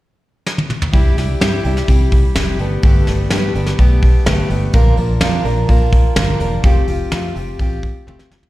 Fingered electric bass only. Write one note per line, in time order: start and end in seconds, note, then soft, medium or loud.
0.93 1.11 C2 medium
1.16 1.34 C2 medium
1.41 1.58 G2 medium
1.65 1.82 C2 medium
1.88 2.23 C3 medium
2.36 2.60 F1 medium
2.60 2.77 G1 medium
2.83 3.01 G1 medium
3.08 3.25 G1 medium
3.31 3.48 G2 medium
3.55 3.73 G1 medium
3.79 4.14 B1 medium
4.27 4.44 G1 medium
4.50 4.67 G1 medium
4.73 4.91 A#1 medium
4.98 5.15 A#1 medium
5.21 5.39 F2 medium
5.45 5.62 A#1 medium
5.69 6.04 A#2 medium
6.16 6.34 G1 medium
6.40 6.58 E1 medium
6.64 6.81 F1 medium
6.88 7.05 F1 medium
7.12 7.30 F2 medium
7.36 7.53 F1 medium
7.59 7.94 A1 medium
8.07 8.25 F1 medium
8.31 8.48 F1 medium